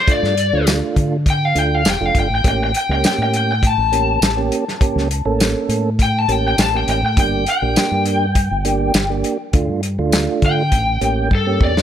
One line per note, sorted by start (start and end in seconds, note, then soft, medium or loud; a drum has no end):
0.08 0.35 A3 medium
0.08 0.35 D4 medium
0.08 0.35 F4 medium
0.08 kick loud
0.08 closed hi-hat medium
0.12 0.67 D5 loud
0.23 0.51 G2 medium
0.23 snare soft
0.37 closed hi-hat medium
0.53 0.81 D2 medium
0.53 1.17 A3 medium
0.53 1.17 D4 medium
0.53 1.17 F4 medium
0.67 snare loud
0.67 closed hi-hat medium
0.67 tambourine loud
0.96 1.52 D3 medium
0.96 kick medium
0.96 closed hi-hat medium
1.26 kick medium
1.26 closed hi-hat medium
1.30 1.45 G5 loud
1.45 1.59 F5 medium
1.55 1.83 D2 medium
1.55 1.83 A3 medium
1.55 1.83 D4 medium
1.55 1.83 F4 medium
1.55 1.75 G5 medium
1.55 closed hi-hat medium
1.75 1.86 F5 medium
1.85 1.99 E1 medium
1.85 snare loud
1.85 closed hi-hat medium
1.85 tambourine loud
1.90 2.06 G5 loud
2.00 2.13 F1 medium
2.00 2.28 A3 medium
2.00 2.28 D4 medium
2.00 2.28 F4 medium
2.06 2.17 F5 medium
2.15 2.29 G1 medium
2.15 kick medium
2.15 closed hi-hat medium
2.20 2.32 G5 medium
2.30 2.44 A1 medium
2.35 2.46 G5 medium
2.44 2.72 A1 loud
2.44 2.72 A#3 medium
2.44 2.72 C#4 medium
2.44 2.72 G4 medium
2.44 kick loud
2.44 closed hi-hat medium
2.48 2.61 G5 loud
2.64 2.75 G5 medium
2.74 2.91 G5 medium
2.74 closed hi-hat medium
2.89 3.02 C#2 loud
2.89 3.54 A#3 medium
2.89 3.54 C#4 medium
2.89 3.54 G4 medium
2.89 3.04 G5 medium
3.04 3.20 G5 medium
3.04 snare loud
3.04 closed hi-hat medium
3.04 tambourine loud
3.18 3.74 A2 medium
3.23 3.34 G5 medium
3.34 3.50 G5 medium
3.34 closed hi-hat medium
3.52 3.67 G5 medium
3.63 kick medium
3.63 closed hi-hat medium
3.67 5.38 A5 loud
3.78 4.19 A1 medium
3.92 4.20 A#3 medium
3.92 4.20 C#4 medium
3.92 4.20 G4 medium
3.92 closed hi-hat medium
4.21 4.49 A1 medium
4.21 snare loud
4.21 closed hi-hat medium
4.21 tambourine loud
4.37 4.65 A#3 medium
4.37 4.65 C#4 medium
4.37 4.65 G4 loud
4.52 closed hi-hat medium
4.68 snare soft
4.81 5.08 A#3 medium
4.81 5.08 C#4 medium
4.81 5.08 G4 medium
4.81 kick loud
4.81 closed hi-hat medium
4.96 5.24 C#2 medium
4.96 snare soft
5.11 closed hi-hat medium
5.25 5.53 A1 medium
5.25 5.90 A#3 medium
5.25 5.90 C#4 medium
5.25 5.90 A4 loud
5.40 snare loud
5.40 closed hi-hat medium
5.40 tambourine loud
5.69 6.25 A2 loud
5.69 closed hi-hat medium
5.99 6.19 G5 loud
5.99 kick medium
5.99 closed hi-hat medium
6.19 6.32 A5 medium
6.28 6.56 A1 medium
6.28 6.56 A#3 medium
6.28 6.56 C#4 medium
6.28 6.56 G4 medium
6.28 6.45 G5 medium
6.28 closed hi-hat medium
6.48 6.59 G5 loud
6.58 6.86 A1 medium
6.58 6.75 A5 loud
6.58 snare loud
6.58 closed hi-hat medium
6.58 tambourine loud
6.74 7.01 A#3 medium
6.74 7.01 C#4 medium
6.74 7.01 G4 medium
6.74 6.89 G5 loud
6.87 7.02 A1 medium
6.87 7.04 G5 loud
6.87 closed hi-hat medium
7.03 7.18 A2 medium
7.03 7.18 G5 medium
7.17 7.45 G1 loud
7.17 7.45 A#3 medium
7.17 7.45 D4 medium
7.17 7.45 G4 medium
7.17 7.47 G5 medium
7.17 kick loud
7.17 closed hi-hat medium
7.46 9.21 G5 loud
7.46 closed hi-hat medium
7.62 7.75 A#1 loud
7.62 8.26 A#3 medium
7.62 8.26 D4 medium
7.62 8.26 G4 medium
7.76 snare loud
7.76 closed hi-hat medium
7.76 tambourine loud
7.91 8.47 G2 medium
8.06 closed hi-hat medium
8.35 kick medium
8.35 closed hi-hat medium
8.51 8.92 G1 medium
8.65 8.93 A#3 medium
8.65 8.93 D4 medium
8.65 8.93 G4 loud
8.65 closed hi-hat medium
8.94 9.22 G1 medium
8.94 snare loud
8.94 closed hi-hat medium
8.94 tambourine loud
9.10 9.37 A#3 medium
9.10 9.37 D4 medium
9.10 9.37 G4 medium
9.24 closed hi-hat medium
9.53 9.68 D2 loud
9.53 9.81 A3 medium
9.53 9.81 D4 medium
9.53 9.81 F4 medium
9.53 kick loud
9.53 closed hi-hat medium
9.68 9.97 G2 medium
9.83 closed hi-hat medium
9.98 10.26 D2 medium
9.98 10.63 A3 medium
9.98 10.63 D4 medium
9.98 10.63 F4 loud
10.12 snare loud
10.12 closed hi-hat medium
10.12 tambourine loud
10.42 10.70 D3 loud
10.42 11.30 G5 loud
10.42 kick medium
10.42 closed hi-hat medium
10.72 11.00 A1 loud
10.72 kick medium
10.72 closed hi-hat medium
11.01 11.29 A1 medium
11.01 11.29 A#3 medium
11.01 11.29 C#4 medium
11.01 11.29 G4 medium
11.01 closed hi-hat medium
11.31 11.58 G2 medium
11.31 11.62 A4 medium
11.31 kick medium
11.46 11.74 A#3 medium
11.46 11.74 C#4 medium
11.46 11.74 G4 medium
11.60 11.82 E2 medium
11.60 11.82 D5 loud
11.60 kick medium
11.77 snare medium